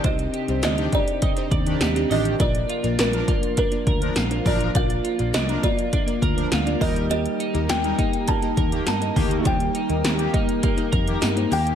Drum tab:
HH |xxxxxxxxxxxxxxox|xxxxxxxxxxxxxxox|xxxxxxxxxxxxxxox|xxxxxxxxxxxxxxox|
TB |----x-------x---|----x-------x---|----x-------x---|----x-------x---|
SD |----o-------o---|----o-------o---|----o-------o---|----o-------o---|
BD |o-----o-o-o-----|o-----o-o-o---o-|o-----o-o-o---o-|------o-o-o---o-|

HH |xxxxxxxxxxxxxxox|
TB |----x-------x---|
SD |----o-------o---|
BD |o-----o-o-o-----|